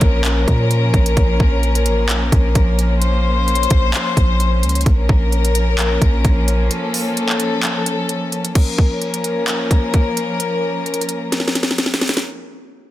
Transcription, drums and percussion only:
0.01 kick, closed hi-hat
0.25 clap, closed hi-hat
0.48 kick, closed hi-hat
0.71 closed hi-hat
0.94 kick, closed hi-hat
1.06 closed hi-hat
1.17 kick, closed hi-hat
1.40 kick
1.63 closed hi-hat
1.75 closed hi-hat
1.86 closed hi-hat
2.09 clap, closed hi-hat
2.32 kick, closed hi-hat
2.55 kick, closed hi-hat
2.79 closed hi-hat
3.02 closed hi-hat
3.48 closed hi-hat
3.55 closed hi-hat
3.63 closed hi-hat
3.70 kick, closed hi-hat
3.94 clap, closed hi-hat
4.17 kick, closed hi-hat
4.40 closed hi-hat
4.63 closed hi-hat
4.69 closed hi-hat
4.75 closed hi-hat
4.81 closed hi-hat
4.86 kick, closed hi-hat
5.09 kick
5.32 closed hi-hat
5.45 closed hi-hat
5.55 closed hi-hat
5.79 clap, closed hi-hat
6.02 kick, closed hi-hat
6.25 kick, closed hi-hat
6.48 closed hi-hat
6.71 closed hi-hat
6.94 open hi-hat
7.17 closed hi-hat
7.29 clap
7.40 closed hi-hat
7.63 clap, closed hi-hat
7.86 closed hi-hat
8.09 closed hi-hat
8.32 closed hi-hat
8.45 closed hi-hat
8.55 kick, closed hi-hat, crash
8.78 kick
9.02 closed hi-hat
9.14 closed hi-hat
9.24 closed hi-hat
9.48 clap, closed hi-hat
9.71 kick, closed hi-hat
9.94 kick, closed hi-hat
10.17 closed hi-hat
10.40 closed hi-hat
10.86 closed hi-hat
10.94 closed hi-hat
11.01 closed hi-hat
11.09 closed hi-hat
11.32 snare, closed hi-hat
11.40 snare
11.48 snare
11.55 snare, closed hi-hat
11.63 snare
11.71 snare
11.78 snare, closed hi-hat
11.86 snare
11.94 snare
12.01 snare, closed hi-hat
12.08 snare, closed hi-hat
12.14 snare, closed hi-hat
12.19 closed hi-hat

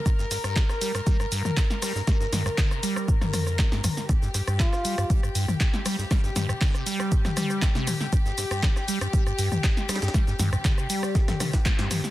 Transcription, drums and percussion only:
0.06 kick, cross-stick, closed hi-hat, shaker
0.19 snare, shaker
0.31 cross-stick, snare, closed hi-hat, open hi-hat, shaker
0.44 cross-stick, closed hi-hat, shaker
0.56 kick, snare, clap, closed hi-hat, shaker
0.69 cross-stick, snare, shaker
0.81 closed hi-hat, open hi-hat, shaker
0.95 cross-stick, closed hi-hat, shaker
1.07 kick, closed hi-hat, shaker
1.20 cross-stick, shaker
1.32 closed hi-hat, open hi-hat, shaker
1.45 cross-stick, mid tom, shaker
1.57 kick, snare, clap, closed hi-hat, shaker
1.70 snare, shaker
1.82 cross-stick, open hi-hat, shaker
1.95 snare, shaker
2.07 kick, cross-stick, snare, closed hi-hat, shaker
2.21 snare, shaker
2.33 cross-stick, snare, closed hi-hat, open hi-hat, mid tom, shaker
2.46 cross-stick, shaker
2.58 kick, snare, clap, closed hi-hat, shaker
2.71 cross-stick, shaker
2.83 closed hi-hat, open hi-hat, shaker
2.96 cross-stick, shaker
3.08 kick, shaker
3.22 cross-stick, snare, mid tom, shaker
3.33 cross-stick, closed hi-hat, open hi-hat, mid tom, shaker
3.47 cross-stick, shaker
3.59 kick, snare, clap, closed hi-hat, shaker
3.72 snare, shaker
3.84 cross-stick, closed hi-hat, open hi-hat, mid tom, shaker
3.97 snare, shaker
4.09 kick, cross-stick, closed hi-hat, shaker
4.22 snare, shaker
4.34 cross-stick, snare, closed hi-hat, open hi-hat, shaker
4.47 cross-stick, closed hi-hat, shaker
4.60 kick, snare, clap, closed hi-hat, shaker
4.73 cross-stick, snare, shaker
4.85 closed hi-hat, open hi-hat, shaker
4.98 cross-stick, closed hi-hat, shaker
5.10 kick, closed hi-hat, shaker
5.23 cross-stick, shaker
5.35 closed hi-hat, open hi-hat, shaker
5.48 cross-stick, mid tom, shaker
5.60 kick, snare, clap, closed hi-hat, shaker
5.74 snare, shaker
5.85 cross-stick, open hi-hat, shaker
5.99 snare, shaker
6.11 kick, cross-stick, snare, closed hi-hat, shaker
6.24 snare, shaker
6.36 cross-stick, snare, closed hi-hat, open hi-hat, mid tom, shaker
6.49 cross-stick, shaker
6.61 kick, snare, clap, closed hi-hat, shaker
6.74 cross-stick, shaker
6.86 closed hi-hat, open hi-hat, shaker
7.00 cross-stick, shaker
7.12 kick, closed hi-hat, shaker
7.25 cross-stick, snare, mid tom, shaker
7.37 cross-stick, closed hi-hat, open hi-hat, mid tom, shaker
7.50 cross-stick, shaker
7.62 kick, snare, clap, closed hi-hat, shaker
7.75 snare, shaker
7.87 cross-stick, closed hi-hat, open hi-hat, mid tom, shaker
8.00 snare, shaker
8.12 kick, cross-stick, closed hi-hat, shaker
8.26 snare, shaker
8.38 cross-stick, snare, closed hi-hat, open hi-hat, shaker
8.51 cross-stick, closed hi-hat, shaker
8.63 kick, snare, clap, closed hi-hat, shaker
8.76 cross-stick, snare, shaker
8.88 closed hi-hat, open hi-hat, shaker
9.01 cross-stick, closed hi-hat, shaker
9.13 kick, closed hi-hat, shaker
9.27 cross-stick, shaker
9.39 closed hi-hat, open hi-hat, shaker
9.52 cross-stick, mid tom, shaker
9.64 kick, snare, clap, closed hi-hat, shaker
9.77 snare, shaker
9.89 cross-stick, snare, closed hi-hat, open hi-hat, shaker
9.96 snare, closed hi-hat
10.02 snare, closed hi-hat, shaker
10.08 snare, closed hi-hat
10.14 kick, cross-stick, snare, closed hi-hat, shaker
10.27 snare, shaker
10.39 cross-stick, snare, closed hi-hat, open hi-hat, mid tom, shaker
10.53 cross-stick, shaker
10.65 kick, snare, clap, closed hi-hat, shaker
10.78 cross-stick, shaker
10.90 closed hi-hat, open hi-hat, shaker
11.03 cross-stick, shaker
11.15 kick, snare, closed hi-hat, shaker
11.28 cross-stick, snare, closed hi-hat, mid tom, shaker
11.40 cross-stick, snare, closed hi-hat, open hi-hat, mid tom, shaker
11.53 kick, cross-stick, snare, closed hi-hat, shaker
11.66 kick, snare, clap, closed hi-hat, shaker
11.79 snare, closed hi-hat, shaker
11.91 cross-stick, closed hi-hat, open hi-hat, mid tom, shaker
12.04 snare, shaker

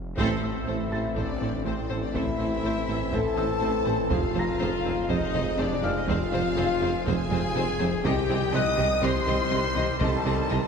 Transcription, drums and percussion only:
0.18 taiko
1.17 taiko
2.15 taiko
3.13 taiko
4.11 taiko
5.09 taiko
6.08 taiko
7.06 taiko
8.05 taiko
9.03 taiko
10.01 taiko

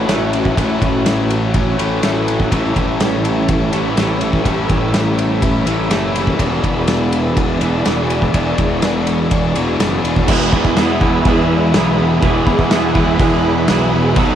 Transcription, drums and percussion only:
0.09 snare, ride
0.33 ride
0.45 kick
0.57 kick, ride
0.82 kick, ride
1.06 snare, ride
1.30 ride
1.54 kick, ride
1.79 ride
2.03 snare, ride
2.28 ride
2.40 kick
2.52 kick, ride
2.76 kick, ride
3.00 snare, ride
3.25 ride
3.49 kick, ride
3.73 ride
3.97 snare, ride
4.21 ride
4.33 kick
4.45 kick, ride
4.70 kick, ride
4.94 snare, ride
5.19 ride
5.42 kick, ride
5.67 ride
5.91 snare, ride
6.16 ride
6.27 kick
6.39 kick, ride
6.64 kick, ride
6.88 snare, ride
7.12 ride
7.37 kick, ride
7.61 ride
7.85 snare, ride
8.10 ride
8.22 kick
8.34 kick, ride
8.58 kick, ride
8.82 snare, ride
9.07 ride
9.31 kick, ride
9.56 ride
9.80 snare, ride
10.05 ride
10.16 kick
10.28 kick, crash
10.53 kick
10.65 kick
10.76 snare, crash
11.01 kick
11.25 kick, crash
11.74 snare, crash
12.22 kick, crash
12.47 kick
12.59 kick
12.71 snare, crash
12.95 kick
13.19 kick, crash
13.68 snare, crash
14.16 kick, crash

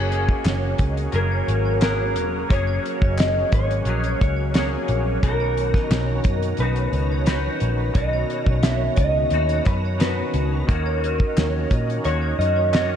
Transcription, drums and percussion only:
0.12 closed hi-hat
0.29 kick
0.45 snare, clap, closed hi-hat
0.78 kick, closed hi-hat
0.97 closed hi-hat
1.12 closed hi-hat
1.49 closed hi-hat
1.81 snare, clap, closed hi-hat
2.16 closed hi-hat
2.50 kick, closed hi-hat
2.85 closed hi-hat
3.02 kick
3.18 snare, clap, closed hi-hat
3.52 kick, closed hi-hat
3.71 closed hi-hat
3.85 closed hi-hat
4.04 closed hi-hat
4.21 kick, closed hi-hat
4.54 snare, clap, closed hi-hat
4.88 closed hi-hat
5.23 kick, closed hi-hat
5.57 closed hi-hat
5.74 kick, snare
5.91 snare, clap, closed hi-hat
6.24 kick, closed hi-hat
6.42 closed hi-hat
6.57 closed hi-hat
6.76 closed hi-hat
6.93 closed hi-hat
7.26 snare, clap, closed hi-hat
7.60 closed hi-hat
7.95 kick, closed hi-hat
8.30 closed hi-hat
8.47 kick
8.63 snare, clap, closed hi-hat
8.96 kick, closed hi-hat
9.30 closed hi-hat
9.49 closed hi-hat
9.66 kick, clap, closed hi-hat
10.00 snare, clap, closed hi-hat
10.34 closed hi-hat
10.69 kick, closed hi-hat
11.04 closed hi-hat
11.20 kick
11.37 snare, clap, closed hi-hat
11.71 kick, closed hi-hat
11.90 closed hi-hat
12.04 closed hi-hat
12.41 closed hi-hat
12.73 snare, clap, closed hi-hat

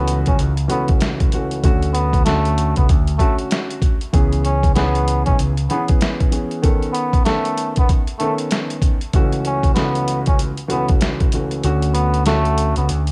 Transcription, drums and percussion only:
0.08 closed hi-hat
0.26 kick, closed hi-hat
0.39 closed hi-hat
0.57 closed hi-hat
0.70 closed hi-hat
0.88 kick, closed hi-hat
1.01 snare, closed hi-hat
1.20 kick, closed hi-hat
1.32 closed hi-hat
1.51 closed hi-hat
1.64 kick, closed hi-hat
1.83 closed hi-hat
1.95 closed hi-hat
2.13 kick, closed hi-hat
2.26 snare, closed hi-hat
2.45 closed hi-hat
2.58 closed hi-hat
2.76 kick, closed hi-hat
2.89 kick, closed hi-hat
3.07 closed hi-hat
3.19 kick, closed hi-hat
3.38 closed hi-hat
3.51 snare, closed hi-hat
3.70 closed hi-hat
3.82 kick, closed hi-hat
4.01 closed hi-hat
4.14 kick, closed hi-hat
4.33 closed hi-hat
4.45 closed hi-hat
4.63 kick, closed hi-hat
4.76 snare, closed hi-hat
4.95 closed hi-hat
5.08 closed hi-hat
5.26 kick, closed hi-hat
5.39 closed hi-hat
5.57 closed hi-hat
5.70 closed hi-hat
5.88 kick, closed hi-hat
6.01 snare, closed hi-hat
6.20 kick, closed hi-hat
6.32 closed hi-hat
6.51 closed hi-hat
6.63 kick, closed hi-hat
6.82 closed hi-hat
6.95 closed hi-hat
7.13 kick, closed hi-hat
7.25 snare, closed hi-hat
7.45 closed hi-hat
7.58 closed hi-hat
7.76 kick, closed hi-hat
7.89 kick, closed hi-hat
8.07 closed hi-hat
8.20 closed hi-hat
8.38 closed hi-hat
8.51 snare, closed hi-hat
8.70 closed hi-hat
8.82 kick, closed hi-hat
9.01 closed hi-hat
9.13 kick, closed hi-hat
9.32 closed hi-hat
9.45 closed hi-hat
9.63 kick, closed hi-hat
9.76 snare, closed hi-hat
9.95 closed hi-hat
10.08 closed hi-hat
10.26 kick, closed hi-hat
10.39 closed hi-hat
10.57 closed hi-hat
10.70 closed hi-hat
10.88 kick, closed hi-hat
11.01 snare, closed hi-hat
11.20 kick, closed hi-hat
11.32 closed hi-hat
11.51 closed hi-hat
11.64 closed hi-hat
11.82 closed hi-hat
11.95 closed hi-hat
12.14 closed hi-hat
12.26 snare, closed hi-hat
12.45 closed hi-hat
12.58 closed hi-hat
12.76 closed hi-hat
12.89 closed hi-hat
13.07 closed hi-hat

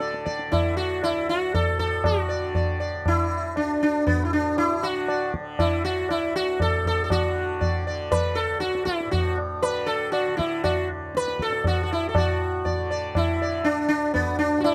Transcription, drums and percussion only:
0.00 tabla te
0.14 tabla te
0.27 tabla ke
0.39 tabla te
0.53 tabla na, tabla ge
1.03 tabla na
1.54 tabla na, tabla ge
1.79 tabla ge
2.04 tabla na, tabla ge
2.55 tabla tin, tabla ge
3.06 tabla na, tabla ge
3.56 tabla na
4.07 tabla tin, tabla ge
4.57 tabla na
4.83 tabla na
5.08 tabla na
5.34 tabla ke
5.59 tabla na, tabla ge
6.09 tabla na
6.60 tabla na, tabla ge
6.85 tabla ge
7.10 tabla na, tabla ge
7.61 tabla tin, tabla ge
8.12 tabla na, tabla ge
8.62 tabla te
8.75 tabla te
8.87 tabla ke
9.01 tabla te
9.13 tabla tin, tabla ge
9.38 tabla na
9.63 tabla na
9.89 tabla na
10.13 tabla na
10.39 tabla ke
10.64 tabla na, tabla ge
11.15 tabla te
11.28 tabla te
11.39 tabla ke
11.52 tabla te
11.64 tabla tin, tabla ge
12.15 tabla na, tabla ge
12.66 tabla tin, tabla ge
13.15 tabla na, tabla ge
13.65 tabla na
14.15 tabla tin, tabla ge
14.40 tabla na
14.65 tabla na

